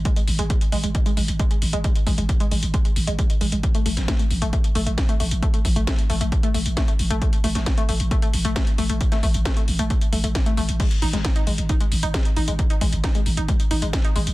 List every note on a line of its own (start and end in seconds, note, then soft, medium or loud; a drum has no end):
0.05 0.10 G#3 loud
0.05 kick loud
0.05 closed hi-hat medium
0.16 0.21 G#3 medium
0.16 closed hi-hat medium
0.28 0.38 G#1 loud
0.28 open hi-hat loud
0.39 0.50 G#1 medium
0.39 0.44 G#3 loud
0.39 closed hi-hat medium
0.50 0.55 G#3 medium
0.50 kick loud
0.50 closed hi-hat medium
0.61 closed hi-hat medium
0.72 0.83 G#1 loud
0.72 0.77 G#3 loud
0.72 open hi-hat loud
0.84 0.95 G#1 medium
0.84 0.88 G#3 medium
0.84 closed hi-hat medium
0.95 kick loud
0.95 closed hi-hat medium
1.06 1.11 G#3 loud
1.06 closed hi-hat medium
1.17 1.28 G#1 loud
1.17 1.22 G#3 medium
1.17 open hi-hat loud
1.28 1.39 G#1 medium
1.28 closed hi-hat medium
1.39 1.44 G#3 loud
1.39 kick loud
1.39 closed hi-hat medium
1.51 1.56 G#3 medium
1.51 closed hi-hat medium
1.62 1.73 G#1 loud
1.62 open hi-hat loud
1.73 1.84 G#1 medium
1.73 1.78 G#3 loud
1.73 closed hi-hat medium
1.84 1.89 G#3 medium
1.84 kick loud
1.84 closed hi-hat medium
1.95 closed hi-hat medium
2.07 2.17 G#1 loud
2.07 2.12 G#3 loud
2.07 kick medium
2.07 open hi-hat loud
2.18 2.29 G#1 medium
2.18 2.23 G#3 medium
2.18 closed hi-hat medium
2.29 kick loud
2.29 closed hi-hat medium
2.40 2.45 G#3 loud
2.40 closed hi-hat medium
2.51 2.62 G#1 loud
2.51 2.56 G#3 medium
2.51 open hi-hat medium
2.63 2.74 G#1 medium
2.63 closed hi-hat medium
2.74 2.79 G#3 loud
2.74 kick loud
2.74 closed hi-hat medium
2.85 2.90 G#3 medium
2.85 closed hi-hat medium
2.96 3.07 G#1 loud
2.96 open hi-hat loud
3.07 3.18 G#1 medium
3.07 3.12 G#3 loud
3.07 closed hi-hat medium
3.19 3.24 G#3 medium
3.19 kick loud
3.19 closed hi-hat medium
3.30 closed hi-hat medium
3.41 3.52 G#1 loud
3.41 3.46 G#3 loud
3.41 open hi-hat medium
3.52 3.63 G#1 medium
3.52 3.57 G#3 medium
3.52 closed hi-hat medium
3.63 kick loud
3.63 closed hi-hat medium
3.75 3.79 A3 loud
3.75 closed hi-hat medium
3.86 3.96 A1 loud
3.86 3.91 A3 medium
3.86 open hi-hat loud
3.97 4.08 A1 medium
3.97 snare soft
3.97 closed hi-hat medium
4.08 4.13 A3 loud
4.08 kick loud
4.08 snare loud
4.08 closed hi-hat medium
4.19 4.24 A3 medium
4.19 closed hi-hat medium
4.31 4.41 A1 loud
4.31 open hi-hat medium
4.42 4.53 A1 medium
4.42 4.47 A3 loud
4.42 closed hi-hat medium
4.53 4.58 A3 medium
4.53 kick loud
4.53 closed hi-hat medium
4.64 closed hi-hat medium
4.75 4.86 A1 loud
4.75 4.80 A3 loud
4.75 open hi-hat loud
4.87 4.97 A1 medium
4.87 4.91 A3 medium
4.87 closed hi-hat medium
4.98 kick loud
4.98 snare loud
4.98 closed hi-hat medium
5.09 5.14 A3 loud
5.09 closed hi-hat medium
5.20 5.31 A1 loud
5.20 5.25 A3 medium
5.20 open hi-hat medium
5.31 5.42 A1 medium
5.31 closed hi-hat medium
5.42 5.47 A3 loud
5.42 kick loud
5.42 closed hi-hat medium
5.54 5.59 A3 medium
5.54 closed hi-hat medium
5.65 5.75 A1 loud
5.65 kick medium
5.65 open hi-hat loud
5.76 5.87 A1 medium
5.76 5.81 A3 loud
5.76 closed hi-hat medium
5.87 5.92 A3 medium
5.87 kick loud
5.87 snare loud
5.87 closed hi-hat medium
5.99 closed hi-hat medium
6.10 6.20 A1 loud
6.10 6.15 A3 loud
6.10 open hi-hat medium
6.21 6.32 A1 medium
6.21 6.26 A3 medium
6.21 closed hi-hat medium
6.32 kick loud
6.32 closed hi-hat medium
6.43 6.48 A3 loud
6.43 closed hi-hat medium
6.54 6.65 A1 loud
6.54 6.59 A3 medium
6.54 open hi-hat loud
6.66 6.77 A1 medium
6.66 closed hi-hat medium
6.77 6.82 A3 loud
6.77 kick loud
6.77 snare loud
6.77 closed hi-hat medium
6.88 6.93 A3 medium
6.88 closed hi-hat medium
6.99 7.10 A1 loud
6.99 open hi-hat medium
7.10 7.21 A1 medium
7.10 7.15 A3 loud
7.10 closed hi-hat medium
7.22 7.26 A3 medium
7.22 kick loud
7.22 closed hi-hat medium
7.33 closed hi-hat medium
7.44 7.55 A1 loud
7.44 7.49 A3 medium
7.44 open hi-hat loud
7.55 7.66 A1 medium
7.55 7.60 A3 medium
7.55 snare soft
7.55 closed hi-hat medium
7.66 kick loud
7.66 snare loud
7.66 closed hi-hat medium
7.78 7.82 A3 loud
7.78 closed hi-hat medium
7.89 7.99 A1 medium
7.89 7.94 A3 medium
7.89 open hi-hat medium
8.00 8.11 A1 medium
8.00 closed hi-hat medium
8.11 8.16 A3 loud
8.11 kick loud
8.11 closed hi-hat medium
8.22 8.27 A3 medium
8.22 closed hi-hat medium
8.33 8.44 A1 loud
8.33 open hi-hat loud
8.45 8.56 A1 medium
8.45 8.50 A3 loud
8.45 closed hi-hat medium
8.56 8.61 A3 medium
8.56 kick loud
8.56 snare loud
8.56 closed hi-hat medium
8.67 closed hi-hat medium
8.78 8.89 A1 loud
8.78 8.83 A3 loud
8.78 open hi-hat medium
8.89 9.00 A1 medium
8.89 8.94 A3 medium
8.89 closed hi-hat medium
9.01 kick loud
9.01 closed hi-hat medium
9.12 9.17 A3 loud
9.12 snare soft
9.12 closed hi-hat medium
9.23 9.34 A1 loud
9.23 9.28 A3 medium
9.23 kick medium
9.23 open hi-hat loud
9.34 9.45 A1 medium
9.34 closed hi-hat medium
9.45 9.50 A3 loud
9.45 kick loud
9.45 snare loud
9.45 closed hi-hat medium
9.57 9.62 A3 medium
9.57 closed hi-hat medium
9.68 9.79 A1 loud
9.68 open hi-hat medium
9.79 9.90 A1 medium
9.79 9.84 A3 loud
9.79 closed hi-hat medium
9.90 9.95 A3 medium
9.90 kick loud
9.90 closed hi-hat medium
10.01 closed hi-hat medium
10.13 10.23 A1 loud
10.13 10.18 A3 medium
10.13 open hi-hat loud
10.24 10.35 A1 medium
10.24 10.27 A3 medium
10.24 closed hi-hat medium
10.35 kick loud
10.35 snare loud
10.35 closed hi-hat medium
10.46 10.54 A3 loud
10.46 closed hi-hat medium
10.57 10.68 A1 loud
10.57 10.62 A3 loud
10.57 open hi-hat medium
10.69 10.80 A1 medium
10.69 closed hi-hat medium
10.80 10.85 G#3 medium
10.80 kick loud
10.80 closed hi-hat medium
10.80 crash medium
10.91 closed hi-hat medium
11.02 11.13 G#1 loud
11.02 11.07 D#4 loud
11.02 open hi-hat loud
11.13 11.24 G#1 medium
11.13 11.18 G#3 medium
11.13 snare soft
11.13 closed hi-hat medium
11.25 kick loud
11.25 snare loud
11.25 closed hi-hat medium
11.36 11.41 D#4 loud
11.36 closed hi-hat medium
11.47 11.58 G#1 loud
11.47 11.52 G#3 medium
11.47 open hi-hat medium
11.58 11.69 G#1 medium
11.58 closed hi-hat medium
11.69 11.74 D#4 loud
11.69 kick loud
11.69 closed hi-hat medium
11.80 11.85 G#3 medium
11.80 closed hi-hat medium
11.92 12.02 G#1 loud
11.92 open hi-hat loud
12.03 12.14 G#1 medium
12.03 12.08 D#4 loud
12.03 closed hi-hat medium
12.14 12.19 G#3 medium
12.14 kick loud
12.14 snare loud
12.14 closed hi-hat medium
12.25 closed hi-hat medium
12.36 12.47 G#1 loud
12.36 12.41 D#4 loud
12.36 open hi-hat medium
12.48 12.59 G#1 medium
12.48 12.53 G#3 medium
12.48 closed hi-hat medium
12.59 kick loud
12.59 closed hi-hat medium
12.70 12.75 D#4 loud
12.70 closed hi-hat medium
12.81 12.92 G#1 loud
12.81 12.86 G#3 medium
12.81 kick medium
12.81 open hi-hat loud
12.93 13.03 G#1 medium
12.93 closed hi-hat medium
13.04 13.09 D#4 loud
13.04 kick loud
13.04 snare loud
13.04 closed hi-hat medium
13.15 13.20 G#3 medium
13.15 closed hi-hat medium
13.26 13.37 G#1 loud
13.26 open hi-hat medium
13.37 13.48 G#1 medium
13.37 13.42 D#4 loud
13.37 closed hi-hat medium
13.48 13.53 G#3 medium
13.48 kick loud
13.48 closed hi-hat medium
13.60 closed hi-hat medium
13.71 13.82 G#1 loud
13.71 13.76 D#4 loud
13.71 open hi-hat loud
13.82 13.93 G#1 medium
13.82 13.87 G#3 medium
13.82 closed hi-hat medium
13.93 kick loud
13.93 snare loud
13.93 closed hi-hat medium
14.04 14.09 D#4 loud
14.04 closed hi-hat medium
14.16 14.26 G#1 loud
14.16 14.21 G#3 medium
14.16 open hi-hat loud
14.27 14.34 G#1 medium
14.27 closed hi-hat medium